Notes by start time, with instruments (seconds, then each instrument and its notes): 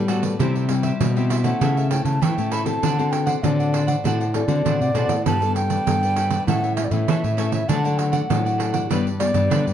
Already playing: nylon-string guitar A2 G3
0.08 nylon-string guitar A3 B3 F#4, cavaquinho F#4 A4 B4 D5, pandeiro
0.22 cavaquinho A4 B4 D5, pandeiro
0.39 nylon-string guitar C3 G3 C4 E4, cavaquinho E4 G4 C5 E5, pandeiro
0.55 cavaquinho G4 C5 E5, pandeiro
0.69 nylon-string guitar G3 C4 E4, muted cavaquinho stroke, pandeiro
0.83 cavaquinho G4 C5 E5, pandeiro
1.00 nylon-string guitar B2 G3, pandeiro
1.16 nylon-string guitar G3 C4 E4, cavaquinho G4 C5 E5, pandeiro
1.29 cavaquinho E4 G4 C5 E5, flute E5, pandeiro
1.44 nylon-string guitar A3 C#4 E4, cavaquinho G4 C5 E5, flute F#5, pandeiro
1.61 nylon-string guitar C#3, cavaquinho E4 A4 C#5 E5, pandeiro
1.77 cavaquinho A4 C#5 E5, pandeiro
1.90 nylon-string guitar A3 C#4 E4, flute G5, muted cavaquinho stroke, pandeiro
2.05 nylon-string guitar C#3, flute A5, pandeiro
2.21 nylon-string guitar C#3 E3, cavaquinho E4 A4 C#5 E5, flute G5, pandeiro
2.38 nylon-string guitar A2 A3 C#4 E4, cavaquinho A4 C#5 E5, pandeiro
2.51 cavaquinho E4 A4 C#5 E5, flute B5, pandeiro
2.65 nylon-string guitar C4 F#4 A4, cavaquinho A4 C#5 E5, flute A5, pandeiro
2.83 nylon-string guitar D3, cavaquinho D4 C5 D5 F#5, pandeiro
2.98 nylon-string guitar C4 F#4 A4, cavaquinho C5 D5 F#5, pandeiro
3.12 flute G5, muted cavaquinho stroke, pandeiro
3.26 cavaquinho C5 D5 F#5, flute F#5, pandeiro
3.43 nylon-string guitar A2 D3 C4 F#4 A4, flute D5, pandeiro
3.59 cavaquinho C5 D5 F#5, pandeiro
3.73 cavaquinho D4 C5 D5 F#5, pandeiro
3.87 cavaquinho C5 D5 F#5, pandeiro
4.04 nylon-string guitar A2 D3 C4 F#4 A4, cavaquinho D4 C5 D5 F#5, pandeiro
4.20 cavaquinho C5 D5 F#5, pandeiro
4.34 nylon-string guitar C4 F#4 A4, flute D5, muted cavaquinho stroke, pandeiro
4.48 nylon-string guitar D3 C4 F#4 A4, pandeiro
4.65 nylon-string guitar A2 D3, cavaquinho D4 C5 D5 F#5, pandeiro
4.81 nylon-string guitar C3, cavaquinho C5 D5 F#5, pandeiro
4.94 nylon-string guitar B2 C4 F#4 A4, cavaquinho D4 C5 D5 F#5, pandeiro
5.09 nylon-string guitar A2, cavaquinho C5 D5 F#5, pandeiro
5.25 nylon-string guitar G2 G3 B3 D4 A4, cavaquinho G4 A4 B4 D5, flute A5, pandeiro
5.41 nylon-string guitar B3 D4 A4, cavaquinho A4 B4 D5, pandeiro
5.56 flute G5, muted cavaquinho stroke, pandeiro
5.70 cavaquinho A4 B4 D5, pandeiro
5.86 nylon-string guitar G2 D3 B3 D4 A4, pandeiro
6.03 cavaquinho A4 B4 D5, pandeiro
6.16 cavaquinho G4 A4 B4 D5, pandeiro
6.30 cavaquinho A4 B4 D5, pandeiro
6.47 nylon-string guitar A2 E3 A3 C#4, cavaquinho E4 A4 C#5 E5, flute F#5, pandeiro
6.63 cavaquinho A4 C#5 E5, pandeiro
6.77 nylon-string guitar E3 A3 C#4, flute E5, muted cavaquinho stroke, pandeiro
6.85 flute D5
6.91 nylon-string guitar A2 E3 A3 C#4, flute E5, pandeiro
7.08 nylon-string guitar E3, cavaquinho E4 A4 C#5 E5, pandeiro
7.24 nylon-string guitar A2, cavaquinho A4 C#5 E5, pandeiro
7.37 nylon-string guitar E3 A3 C#4, cavaquinho E4 A4 C#5 E5, pandeiro
7.52 cavaquinho A4 C#5 E5, pandeiro
7.68 nylon-string guitar D3 F#3 A3 D4, cavaquinho D4 A4 D5 F#5, flute A5, pandeiro
7.84 nylon-string guitar F#3 A3 D4, cavaquinho A4 D5 F#5, pandeiro
7.98 flute F#5, muted cavaquinho stroke, pandeiro
8.12 cavaquinho A4 D5 F#5, pandeiro
8.30 nylon-string guitar A2 F#3 A3 D4, pandeiro
8.45 cavaquinho A4 D5 F#5, pandeiro
8.58 cavaquinho D4 A4 D5 F#5, pandeiro
8.73 cavaquinho A4 D5 F#5, pandeiro
8.90 nylon-string guitar G2 G3 B3 D4, cavaquinho D4 G4 B4 D5, pandeiro
9.06 cavaquinho G4 B4 D5, pandeiro
9.19 nylon-string guitar G3 B3 D4, flute D5, muted cavaquinho stroke, pandeiro
9.34 nylon-string guitar G2 G3 B3 D4, pandeiro
9.50 nylon-string guitar D3, cavaquinho D4 G4 B4 D5, pandeiro
9.66 nylon-string guitar G2, cavaquinho G4 B4 D5, pandeiro